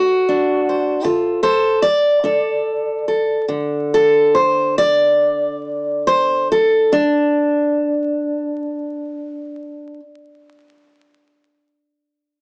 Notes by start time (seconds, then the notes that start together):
Already playing: D4 F#4
0.29 D4
0.69 C5
1.04 D3 F4 A4
1.43 A4 C5
1.82 D5
2.24 D4 A4
3.08 A4
3.48 D3
3.94 A4
4.35 C5
4.78 D5
6.07 C5
6.52 A4
6.93 D4